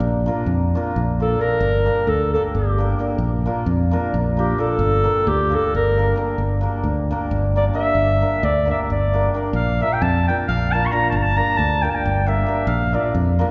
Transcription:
0.00 A#1
0.26 A#3 D4 F4 A#4
0.46 F2
0.75 A#3 D4 F4 A#4
0.96 A#1
1.20 A#3 D4 F4 A4 A#4
1.40 A#3 D4 F4 A#4
1.60 G1
1.86 A#3 D4 G4 A#4
2.07 D2 A4
2.33 A#3 D4 G4 A4 A#4
2.55 G1 G4
2.78 A#3 D4 G4 A#4
2.99 A#3 D4 G4 A#4
3.18 A#1
3.46 A#3 D4 F4 A#4
3.66 F2
3.91 A#3 D4 F4 A#4
4.14 A#1
4.37 A#3 D4 F4 G4 A#4
4.58 A#3 D4 F4 A4 A#4
4.79 G1
5.04 A#3 D4 G4 A#4
5.27 D2 G4
5.50 A#3 D4 G4 A#4
5.55 A4
5.75 G1 A#4
5.97 A#3 D4 G4 A#4
6.16 A#3 D4 G4 A#4
6.38 G1
6.61 A#3 D4 G4 A#4
6.84 D2
7.11 A#3 D4 G4 A#4
7.31 G1
7.56 A#3 D4 G4 A#4 D5
7.74 A#3 D4 G4 A#4 E5
7.95 G1
8.21 A#3 D4 G4 A#4
8.43 D2 D5
8.65 A#3 D4 G4 A#4
8.71 E5
8.90 G1 D5
9.13 A#3 D4 G4 A#4
9.34 A#3 D4 G4 A#4
9.53 A#1 F5
9.80 A#3 D4 F4 A#4 E5
9.93 G5
10.02 F2 A5
10.28 A#3 D4 F4 A#4 G5
10.48 A#1 F5
10.72 A#3 D4 F4 A#4 A5
10.86 C#6
10.91 A#3 D4 F4 A#4 A#5
11.10 G1 A5
11.16 A#5
11.22 A5
11.36 A#3 D4 G4 A#4 A#5
11.57 D2 A5
11.82 A#3 D4 G4 A#4 G5
11.90 A5
11.95 G5
12.05 G1
12.26 A#3 D4 G4 A#4 E5
12.46 A#3 D4 G4 A#4
12.67 A#1 F5
12.92 A#3 D4 F4 A#4 D5
12.99 D5 E5
13.15 F2
13.39 A#3 D4 F4 A#4

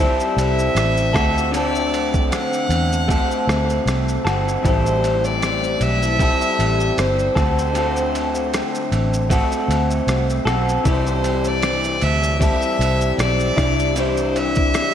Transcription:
Already playing: G3
0.00 C4 E4 A4 C5
0.20 shaker
0.37 C2 E5, ride, shaker
0.59 shaker
0.75 A1, cross-stick, ride, shaker
0.97 shaker
1.13 D2 C4 F#4 A4, kick, cross-stick, ride, shaker
1.38 shaker
1.52 D3 A3 C4 D5, ride, shaker
1.56 F#4 A4
1.75 shaker
1.94 ride, shaker
2.14 kick, shaker
2.31 F#5, cross-stick, ride, shaker
2.53 shaker
2.69 E2, ride, shaker
2.92 shaker
3.08 A3 C4 F#4 A4, kick, ride, shaker
3.31 shaker
3.47 D2, cross-stick, ride, shaker
3.70 shaker
3.86 C2, cross-stick, ride, shaker
4.08 shaker
4.25 G1 C4 F#4 A4, cross-stick, ride, shaker
4.48 shaker
4.62 A1 A2 E3 G3 C4 E4 C5, kick, ride, shaker
4.67 A4
4.86 shaker
5.04 ride, shaker
5.24 D5, shaker
5.42 cross-stick, ride, shaker
5.63 shaker
5.81 B1 E5, ride, shaker
6.03 shaker
6.19 G3 C4 E4 A4, kick, ride, shaker
6.41 shaker
6.59 A1, ride, shaker
6.80 shaker
6.98 G1 C5, cross-stick, ride, shaker
7.19 shaker
7.35 D2 C4 F#4 A4 C5, kick, cross-stick, ride, shaker
7.59 shaker
7.73 D3 A3 C4, ride, shaker
7.77 F#4 A4
7.96 shaker
8.15 ride, shaker
8.35 shaker
8.54 cross-stick, ride, shaker
8.75 shaker
8.92 A1, ride, shaker
9.14 shaker
9.30 A3 C4 F#4 A4, kick, ride, shaker
9.52 shaker
9.68 D2, ride, shaker
9.90 shaker
10.07 C2, cross-stick, ride, shaker
10.30 shaker
10.45 B1 C4 F#4 A4, cross-stick, ride, shaker
10.69 shaker
10.84 C2 C3 E3 G3 C4 C5, kick, ride, shaker
10.88 E4 A4
11.07 shaker
11.24 ride, shaker
11.44 D5, shaker
11.63 cross-stick, ride, shaker
11.84 shaker
12.01 D2 E5, ride, shaker
12.23 shaker
12.39 G3 C4 E4 A4 E5, kick, ride, shaker
12.62 shaker
12.79 C2, ride, shaker
13.01 shaker
13.18 B1 D5, cross-stick, ride, shaker
13.40 shaker
13.56 C2 G3 D4 E4, kick, cross-stick, ride, shaker
13.79 shaker
13.94 C3 E3 G3 D4, ride, shaker
13.99 E4 C5
14.17 shaker
14.36 E5, ride, shaker
14.55 kick, shaker
14.74 cross-stick, ride, shaker

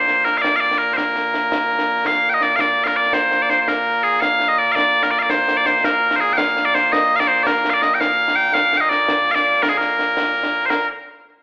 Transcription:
Already playing: A#2 A#3 C5
0.08 snare
0.25 A#4, snare
0.38 D5 F5
0.44 concert bass drum, snare
0.56 F5
0.60 D5, snare
0.71 snare
0.78 A#4
0.94 A#4 C5
0.98 concert bass drum, snare
1.16 snare
1.34 snare
1.52 concert bass drum, snare
1.70 snare
1.79 snare
1.97 snare
2.05 F5, concert bass drum, snare
2.30 G5
2.34 D#5
2.41 D5, snare
2.56 F5, concert bass drum, snare
2.60 D5
2.84 A#4 F5, snare
2.97 D5
3.04 snare
3.13 C5, concert bass drum, snare
3.31 snare
3.42 D5
3.50 C5, snare
3.60 C5
3.68 A#4, concert bass drum, snare
4.03 G#4
4.13 snare
4.21 F5, concert bass drum, snare
4.40 snare
4.48 D#5
4.58 D5
4.72 D5 F5
4.76 concert bass drum, snare
5.03 A#4, snare
5.11 D5
5.19 D5 F5, snare
5.30 C5, concert bass drum, snare
5.48 snare
5.57 D5
5.66 C5, snare
5.84 A#4, concert bass drum, snare
6.11 snare
6.16 C5
6.20 G#4
6.29 G5, snare
6.38 F5, concert bass drum, snare
6.57 snare
6.65 D5
6.75 C5, snare
6.92 D#5, concert bass drum, snare
7.16 D5 F5
7.20 snare
7.28 C5
7.38 snare
7.43 A#4 D5, concert bass drum, snare
7.65 snare
7.70 D5 F5
7.82 D#5, snare
7.94 G5
8.01 F5, concert bass drum, snare
8.28 snare
8.36 G5
8.46 snare
8.54 F5, concert bass drum, snare
8.73 snare
8.77 D#5 G5
8.89 D5, snare
9.08 concert bass drum, snare
9.27 snare
9.31 D5 F5
9.36 snare
9.54 snare
9.63 A#4, concert bass drum, snare
9.69 G#4
9.77 A#4, snare
9.99 snare
10.17 concert bass drum, snare
10.35 snare
10.43 snare
10.61 snare
10.66 C5
10.70 A#4, snare

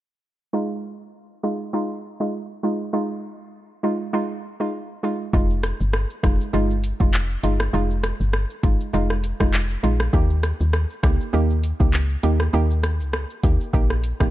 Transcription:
0.53 G#3 D#4 F4
1.43 G#3 D#4 F4
1.73 G#3 D#4 F4
2.20 G#3 D#4 F4
2.63 G#3 D#4 F4
2.93 G#3 D#4 F4
3.83 G#3 D#4 F4
4.13 G#3 D#4 F4
4.60 G#3 D#4 F4
5.03 G#3 D#4 F4
5.33 F1 G#3 D#4 F4, kick, shaker
5.50 shaker
5.63 cross-stick, closed hi-hat, shaker
5.81 G1, shaker
5.93 cross-stick, shaker
6.10 shaker
6.23 F1 G#3 D#4 F4, kick, cross-stick, closed hi-hat, shaker
6.41 shaker
6.53 G1 G#3 D#4 F4, shaker
6.70 shaker
6.84 closed hi-hat, shaker
7.00 F1 G#3 D#4 F4, kick, shaker
7.13 clap, shaker
7.30 shaker
7.43 G1 G#3 D#4 F4, closed hi-hat, shaker
7.60 cross-stick, shaker
7.73 F1 G#3 D#4 F4, shaker
7.90 shaker
8.04 cross-stick, closed hi-hat, shaker
8.20 G1, shaker
8.33 cross-stick, shaker
8.50 shaker
8.63 G#1 G#3 D#4 F4, kick, closed hi-hat, shaker
8.81 shaker
8.93 F1 G#3 D#4 F4, shaker
9.10 cross-stick, shaker
9.24 closed hi-hat, shaker
9.40 F1 G#3 D#4 F4, kick, cross-stick, shaker
9.53 clap, shaker
9.70 shaker
9.83 A#1 G#3 D#4 F4, closed hi-hat, shaker
10.00 cross-stick, shaker
10.13 D#2 A#3 D#4 G4, kick, shaker
10.30 shaker
10.43 cross-stick, closed hi-hat, shaker
10.60 D#2, shaker
10.73 cross-stick, shaker
10.90 shaker
11.03 C#2 A#3 D#4 G4, kick, cross-stick, closed hi-hat, shaker
11.21 shaker
11.33 D#2 A#3 D#4 G4, shaker
11.50 shaker
11.64 closed hi-hat, shaker
11.80 C#2 A#3 D#4 G4, kick, shaker
11.93 clap, shaker
12.10 shaker
12.23 D#2 A#3 D#4 G4, closed hi-hat, shaker
12.40 cross-stick, shaker
12.53 D#2 A#3 D#4 G4, shaker
12.70 shaker
12.83 cross-stick, closed hi-hat, shaker
13.00 C#2, shaker
13.13 cross-stick, shaker
13.30 shaker
13.43 D#2 A#3 D#4 G4, kick, closed hi-hat, shaker
13.61 shaker
13.73 A#1 A#3 D#4 G4, kick, shaker
13.90 cross-stick, shaker
14.04 closed hi-hat, shaker
14.20 A#1 A#3 D#4 G4, kick, cross-stick, shaker

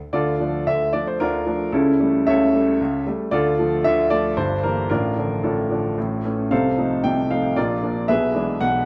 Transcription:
0.13 D2 D3 F4 A4 D5
0.40 F3 A3 D4
0.67 D2 D3 E5
0.93 F3 A3 D4 D5
1.07 C5
1.20 D2 D3 D4 F4 A#4
1.46 F3 A3 D4
1.72 C#2 C#3 C#4 E4 A4
2.00 G3 A3
2.27 C#2 C#3 A4 C#5 E5
2.54 G3 A3
2.80 C#2 C#3
3.07 G3 A3
3.31 D2 D3 F4 A4 D5
3.59 F3 A3
3.84 D2 D3 E5
4.10 F3 A3 D5
4.37 G1 G2 C5
4.63 E3 G3 A#3 A#4
4.90 A1 A2 D4 F4 A#4
5.17 D3 F3 D4
5.43 A1 A2 D4 F4 A4
5.71 D3 F3 D4
5.98 A1 A2
6.25 E3 A3 C#4
6.51 C2 C3 A4 C5 F5
6.78 F3 A3 D#4
7.04 C2 C3 G5
7.31 F3 A3 D#4 F5
7.56 A#1 A#2 F4 A#4 D5
7.83 F3 A#3 D4
8.08 B1 B2 G#4 B4 E5
8.34 E3 G#3 D4
8.61 B1 B2 F#5

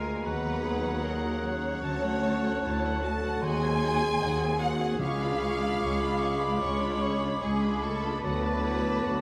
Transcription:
Already playing: D2 D3 G#3 A#3 F4 A#4 F5 G#5 A#5
0.05 A#3 G#4
0.24 D#2 D#3 F#3 B3 F#4 B4 F#5
0.45 F#3 A#3
0.63 D#4 F#4 G#4
0.83 F#3 F#4
1.02 F#3 A#3 D#4 A#4 F#5
1.21 A#3 F#4
1.41 F#3 C#4 C#5
1.62 A#3
1.82 D2 D3 F#3 F#4 A5
2.03 F#3 A3 A4 F#5
2.23 F#3 F#4 A5
2.43 A3 A4 F#5
2.62 D2 F#3 E4 F#4 F#5 A5
2.82 A3 A4 F#5
3.02 F#3 F#4 A4 A5
3.21 A3 A4 F#5
3.40 D#2 D#3 D#4 F#4 G#4 F#5 G#5 C6
3.45 G#5
3.59 G#3 C4 G#4
3.64 G#5
3.78 D#4 F#4
3.84 F#5
3.99 C4 G#4 G#5
4.18 D#2 D#4 F#4 G#4 F#5
4.23 F#5
4.38 C4 G#4
4.42 G#5
4.58 D#4 F#4 G#4 F#5
4.63 F#5
4.78 C4 G#4 C5 G#5
4.99 C#2 C#3 G#3 C#4 F4 G#4 F5 B5 C#6 D6
5.19 D4 F4 B5
5.39 C#4 D4 G#4 C#6
5.60 D4 F4 G#4 B5
5.80 C#2 C#4 G#4 D5 C#6
6.00 D4 F4 B5
6.20 C#4 G#4 C#6
6.40 D4 F4 B4 B5
6.59 C#2 C#4 F4 G#4 C#5 C#6
6.80 G#3 D4 F4 B5
6.99 C#4 D4 G#4 C#6
7.20 D4 F4 G#4 B5
7.39 C#2 G#3 G#4 C#6
7.43 C#4
7.60 D4 F4 B5
7.81 A3 C#4 G#4 A4 C#6
8.02 D4 F4 B4 B5
8.20 D2 D3 F#3 A3 B3 F#4 B4 D6
8.24 F#5 A5
8.43 D4 A4 A5
8.63 A3 E4 F#4 F#5
8.83 D4 A4 A5
9.03 D2 A3 F#4 F#5

